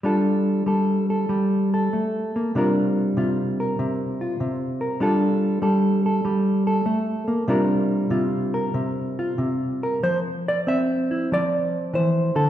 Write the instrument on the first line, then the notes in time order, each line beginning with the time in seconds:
hollow-body jazz guitar
0.03 G3 D4 F4 A4
0.66 G3 A4
1.10 A4
1.29 G3
1.74 A4
1.93 A3
2.36 A#3
2.55 C3 G3 D4 F4 A#4
3.17 C3 F4
3.60 A#4
3.79 C3
4.21 F4
4.40 C3
4.81 A#4
5.00 G3 D4 F4 A4
5.62 G3 A4
6.06 A4
6.25 G3
6.67 A4
6.86 A3
7.28 A#3
7.48 C3 G3 D4 F4 A#4
8.10 C3 F4
8.54 A#4
8.74 C3
9.19 F4
9.38 C3
9.83 A#4
10.03 F3 C5
10.48 D5
10.67 C4 E5
11.11 E4
11.32 F3 D5
11.94 E3 C5
12.35 D3 A4